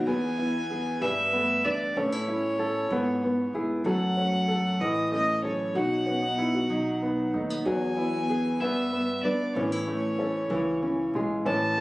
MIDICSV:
0, 0, Header, 1, 5, 480
1, 0, Start_track
1, 0, Key_signature, 4, "major"
1, 0, Tempo, 632244
1, 55, Time_signature, 6, 3, 24, 8
1, 8962, End_track
2, 0, Start_track
2, 0, Title_t, "Fiddle"
2, 0, Program_c, 0, 110
2, 49, Note_on_c, 0, 80, 105
2, 777, Note_on_c, 0, 76, 89
2, 788, Note_off_c, 0, 80, 0
2, 1249, Note_on_c, 0, 74, 76
2, 1260, Note_off_c, 0, 76, 0
2, 1496, Note_on_c, 0, 73, 80
2, 1507, Note_off_c, 0, 74, 0
2, 2691, Note_off_c, 0, 73, 0
2, 2946, Note_on_c, 0, 78, 92
2, 3649, Note_on_c, 0, 75, 81
2, 3661, Note_off_c, 0, 78, 0
2, 3888, Note_off_c, 0, 75, 0
2, 3894, Note_on_c, 0, 75, 82
2, 4114, Note_off_c, 0, 75, 0
2, 4133, Note_on_c, 0, 73, 73
2, 4374, Note_on_c, 0, 78, 92
2, 4386, Note_off_c, 0, 73, 0
2, 5572, Note_off_c, 0, 78, 0
2, 5814, Note_on_c, 0, 80, 95
2, 6534, Note_on_c, 0, 76, 92
2, 6545, Note_off_c, 0, 80, 0
2, 7003, Note_off_c, 0, 76, 0
2, 7007, Note_on_c, 0, 74, 81
2, 7247, Note_on_c, 0, 73, 75
2, 7258, Note_off_c, 0, 74, 0
2, 8451, Note_off_c, 0, 73, 0
2, 8701, Note_on_c, 0, 81, 104
2, 8962, Note_off_c, 0, 81, 0
2, 8962, End_track
3, 0, Start_track
3, 0, Title_t, "Nylon-string guitar"
3, 0, Program_c, 1, 24
3, 51, Note_on_c, 1, 40, 66
3, 55, Note_on_c, 1, 64, 56
3, 293, Note_on_c, 1, 59, 49
3, 541, Note_on_c, 1, 68, 57
3, 743, Note_off_c, 1, 59, 0
3, 743, Note_off_c, 1, 64, 0
3, 747, Note_off_c, 1, 68, 0
3, 769, Note_off_c, 1, 40, 0
3, 772, Note_on_c, 1, 43, 67
3, 777, Note_on_c, 1, 71, 61
3, 1024, Note_on_c, 1, 57, 51
3, 1246, Note_off_c, 1, 71, 0
3, 1256, Note_on_c, 1, 71, 58
3, 1461, Note_off_c, 1, 43, 0
3, 1463, Note_off_c, 1, 71, 0
3, 1493, Note_on_c, 1, 45, 67
3, 1493, Note_on_c, 1, 61, 50
3, 1612, Note_off_c, 1, 61, 0
3, 1612, Note_on_c, 1, 64, 48
3, 1727, Note_off_c, 1, 57, 0
3, 1730, Note_on_c, 1, 61, 50
3, 1965, Note_on_c, 1, 69, 53
3, 2177, Note_off_c, 1, 69, 0
3, 2180, Note_off_c, 1, 61, 0
3, 2181, Note_off_c, 1, 45, 0
3, 2205, Note_on_c, 1, 44, 65
3, 2206, Note_off_c, 1, 64, 0
3, 2215, Note_on_c, 1, 64, 49
3, 2453, Note_on_c, 1, 59, 54
3, 2692, Note_on_c, 1, 68, 63
3, 2897, Note_off_c, 1, 44, 0
3, 2901, Note_off_c, 1, 59, 0
3, 2901, Note_off_c, 1, 68, 0
3, 2902, Note_off_c, 1, 64, 0
3, 2921, Note_on_c, 1, 42, 63
3, 2926, Note_on_c, 1, 54, 56
3, 2931, Note_on_c, 1, 57, 58
3, 2937, Note_on_c, 1, 61, 55
3, 2946, Note_on_c, 1, 69, 62
3, 3167, Note_off_c, 1, 57, 0
3, 3176, Note_on_c, 1, 57, 48
3, 3413, Note_off_c, 1, 69, 0
3, 3422, Note_on_c, 1, 69, 50
3, 3615, Note_off_c, 1, 42, 0
3, 3618, Note_off_c, 1, 54, 0
3, 3626, Note_off_c, 1, 69, 0
3, 3651, Note_on_c, 1, 45, 67
3, 3652, Note_off_c, 1, 61, 0
3, 3655, Note_on_c, 1, 64, 53
3, 3892, Note_off_c, 1, 57, 0
3, 3898, Note_on_c, 1, 61, 56
3, 4136, Note_on_c, 1, 69, 63
3, 4341, Note_off_c, 1, 45, 0
3, 4342, Note_off_c, 1, 64, 0
3, 4343, Note_off_c, 1, 69, 0
3, 4344, Note_off_c, 1, 61, 0
3, 4367, Note_on_c, 1, 47, 62
3, 4372, Note_on_c, 1, 63, 55
3, 4614, Note_on_c, 1, 59, 47
3, 4852, Note_on_c, 1, 66, 59
3, 5082, Note_on_c, 1, 54, 57
3, 5331, Note_off_c, 1, 63, 0
3, 5340, Note_on_c, 1, 63, 53
3, 5567, Note_off_c, 1, 59, 0
3, 5570, Note_on_c, 1, 57, 53
3, 5696, Note_off_c, 1, 57, 0
3, 5696, Note_on_c, 1, 59, 41
3, 5777, Note_off_c, 1, 54, 0
3, 5786, Note_off_c, 1, 63, 0
3, 5806, Note_off_c, 1, 66, 0
3, 5809, Note_off_c, 1, 47, 0
3, 5811, Note_on_c, 1, 40, 67
3, 5812, Note_off_c, 1, 59, 0
3, 5815, Note_on_c, 1, 66, 50
3, 6060, Note_on_c, 1, 59, 50
3, 6300, Note_on_c, 1, 68, 51
3, 6504, Note_off_c, 1, 66, 0
3, 6506, Note_off_c, 1, 68, 0
3, 6507, Note_off_c, 1, 59, 0
3, 6531, Note_off_c, 1, 40, 0
3, 6536, Note_on_c, 1, 43, 67
3, 6541, Note_on_c, 1, 71, 64
3, 6781, Note_on_c, 1, 59, 55
3, 7013, Note_off_c, 1, 71, 0
3, 7022, Note_on_c, 1, 71, 60
3, 7225, Note_off_c, 1, 43, 0
3, 7228, Note_off_c, 1, 59, 0
3, 7228, Note_off_c, 1, 71, 0
3, 7260, Note_on_c, 1, 45, 71
3, 7261, Note_on_c, 1, 61, 58
3, 7379, Note_off_c, 1, 61, 0
3, 7379, Note_on_c, 1, 64, 53
3, 7498, Note_on_c, 1, 61, 44
3, 7741, Note_on_c, 1, 69, 53
3, 7948, Note_off_c, 1, 45, 0
3, 7948, Note_off_c, 1, 69, 0
3, 7966, Note_off_c, 1, 64, 0
3, 7971, Note_on_c, 1, 49, 64
3, 7975, Note_on_c, 1, 64, 54
3, 8216, Note_off_c, 1, 61, 0
3, 8219, Note_on_c, 1, 61, 52
3, 8472, Note_on_c, 1, 68, 61
3, 8664, Note_off_c, 1, 49, 0
3, 8666, Note_off_c, 1, 64, 0
3, 8668, Note_off_c, 1, 61, 0
3, 8674, Note_off_c, 1, 68, 0
3, 8702, Note_on_c, 1, 45, 63
3, 8706, Note_on_c, 1, 64, 53
3, 8962, Note_off_c, 1, 45, 0
3, 8962, Note_off_c, 1, 64, 0
3, 8962, End_track
4, 0, Start_track
4, 0, Title_t, "Upright piano"
4, 0, Program_c, 2, 0
4, 0, Note_on_c, 2, 54, 57
4, 0, Note_on_c, 2, 63, 56
4, 52, Note_on_c, 2, 59, 65
4, 54, Note_on_c, 2, 68, 56
4, 99, Note_off_c, 2, 63, 0
4, 101, Note_off_c, 2, 54, 0
4, 289, Note_on_c, 2, 64, 48
4, 522, Note_off_c, 2, 68, 0
4, 534, Note_on_c, 2, 68, 58
4, 768, Note_on_c, 2, 55, 65
4, 817, Note_off_c, 2, 64, 0
4, 818, Note_off_c, 2, 59, 0
4, 820, Note_off_c, 2, 68, 0
4, 1006, Note_on_c, 2, 59, 50
4, 1251, Note_on_c, 2, 62, 50
4, 1487, Note_off_c, 2, 59, 0
4, 1496, Note_on_c, 2, 61, 67
4, 1497, Note_on_c, 2, 69, 52
4, 1535, Note_off_c, 2, 55, 0
4, 1538, Note_off_c, 2, 62, 0
4, 1733, Note_on_c, 2, 64, 50
4, 1960, Note_off_c, 2, 69, 0
4, 1972, Note_on_c, 2, 69, 60
4, 2211, Note_off_c, 2, 61, 0
4, 2220, Note_on_c, 2, 59, 68
4, 2258, Note_off_c, 2, 64, 0
4, 2258, Note_off_c, 2, 69, 0
4, 2443, Note_off_c, 2, 59, 0
4, 2455, Note_on_c, 2, 59, 48
4, 2691, Note_on_c, 2, 64, 56
4, 2928, Note_on_c, 2, 54, 68
4, 2930, Note_on_c, 2, 69, 58
4, 2977, Note_off_c, 2, 64, 0
4, 2979, Note_off_c, 2, 59, 0
4, 3167, Note_on_c, 2, 61, 51
4, 3392, Note_off_c, 2, 69, 0
4, 3403, Note_on_c, 2, 69, 58
4, 3646, Note_on_c, 2, 52, 69
4, 3648, Note_off_c, 2, 54, 0
4, 3693, Note_off_c, 2, 69, 0
4, 3695, Note_off_c, 2, 61, 0
4, 3883, Note_on_c, 2, 57, 52
4, 4122, Note_on_c, 2, 61, 54
4, 4365, Note_on_c, 2, 54, 64
4, 4367, Note_off_c, 2, 52, 0
4, 4369, Note_on_c, 2, 66, 63
4, 4413, Note_off_c, 2, 61, 0
4, 4414, Note_off_c, 2, 57, 0
4, 4603, Note_on_c, 2, 61, 50
4, 4717, Note_off_c, 2, 61, 0
4, 4725, Note_on_c, 2, 63, 45
4, 4845, Note_on_c, 2, 64, 60
4, 4849, Note_off_c, 2, 66, 0
4, 4958, Note_off_c, 2, 64, 0
4, 4970, Note_on_c, 2, 66, 54
4, 5077, Note_off_c, 2, 63, 0
4, 5089, Note_on_c, 2, 63, 51
4, 5332, Note_on_c, 2, 59, 47
4, 5559, Note_off_c, 2, 63, 0
4, 5570, Note_on_c, 2, 63, 51
4, 5801, Note_off_c, 2, 54, 0
4, 5810, Note_off_c, 2, 66, 0
4, 5812, Note_on_c, 2, 54, 74
4, 5814, Note_on_c, 2, 68, 51
4, 5858, Note_off_c, 2, 63, 0
4, 5859, Note_off_c, 2, 59, 0
4, 6051, Note_on_c, 2, 64, 51
4, 6285, Note_off_c, 2, 68, 0
4, 6297, Note_on_c, 2, 68, 63
4, 6540, Note_on_c, 2, 59, 67
4, 6579, Note_off_c, 2, 54, 0
4, 6579, Note_off_c, 2, 64, 0
4, 6582, Note_off_c, 2, 68, 0
4, 6764, Note_off_c, 2, 59, 0
4, 6776, Note_on_c, 2, 59, 49
4, 7022, Note_on_c, 2, 62, 51
4, 7257, Note_off_c, 2, 62, 0
4, 7259, Note_on_c, 2, 52, 72
4, 7263, Note_on_c, 2, 61, 60
4, 7302, Note_off_c, 2, 59, 0
4, 7497, Note_on_c, 2, 57, 50
4, 7723, Note_off_c, 2, 61, 0
4, 7735, Note_on_c, 2, 61, 66
4, 7964, Note_off_c, 2, 52, 0
4, 7975, Note_on_c, 2, 52, 73
4, 8022, Note_off_c, 2, 61, 0
4, 8023, Note_off_c, 2, 57, 0
4, 8205, Note_off_c, 2, 52, 0
4, 8217, Note_on_c, 2, 52, 49
4, 8466, Note_on_c, 2, 56, 57
4, 8683, Note_off_c, 2, 52, 0
4, 8695, Note_on_c, 2, 52, 70
4, 8703, Note_on_c, 2, 61, 62
4, 8748, Note_off_c, 2, 56, 0
4, 8938, Note_on_c, 2, 57, 51
4, 8962, Note_off_c, 2, 52, 0
4, 8962, Note_off_c, 2, 57, 0
4, 8962, Note_off_c, 2, 61, 0
4, 8962, End_track
5, 0, Start_track
5, 0, Title_t, "Upright bass"
5, 0, Program_c, 3, 32
5, 51, Note_on_c, 3, 40, 86
5, 739, Note_off_c, 3, 40, 0
5, 770, Note_on_c, 3, 43, 80
5, 1225, Note_off_c, 3, 43, 0
5, 1247, Note_on_c, 3, 40, 71
5, 1476, Note_off_c, 3, 40, 0
5, 1487, Note_on_c, 3, 45, 83
5, 2177, Note_off_c, 3, 45, 0
5, 2204, Note_on_c, 3, 44, 82
5, 2662, Note_off_c, 3, 44, 0
5, 2681, Note_on_c, 3, 44, 68
5, 2912, Note_off_c, 3, 44, 0
5, 2917, Note_on_c, 3, 42, 92
5, 3612, Note_off_c, 3, 42, 0
5, 3640, Note_on_c, 3, 33, 74
5, 4100, Note_off_c, 3, 33, 0
5, 4124, Note_on_c, 3, 42, 72
5, 4354, Note_off_c, 3, 42, 0
5, 4360, Note_on_c, 3, 35, 75
5, 5054, Note_off_c, 3, 35, 0
5, 5088, Note_on_c, 3, 35, 77
5, 5544, Note_off_c, 3, 35, 0
5, 5567, Note_on_c, 3, 39, 71
5, 5796, Note_off_c, 3, 39, 0
5, 5811, Note_on_c, 3, 40, 85
5, 6501, Note_off_c, 3, 40, 0
5, 6528, Note_on_c, 3, 43, 77
5, 6986, Note_off_c, 3, 43, 0
5, 7012, Note_on_c, 3, 55, 74
5, 7240, Note_off_c, 3, 55, 0
5, 7250, Note_on_c, 3, 45, 85
5, 7941, Note_off_c, 3, 45, 0
5, 7967, Note_on_c, 3, 37, 72
5, 8426, Note_off_c, 3, 37, 0
5, 8454, Note_on_c, 3, 34, 72
5, 8682, Note_off_c, 3, 34, 0
5, 8701, Note_on_c, 3, 33, 88
5, 8962, Note_off_c, 3, 33, 0
5, 8962, End_track
0, 0, End_of_file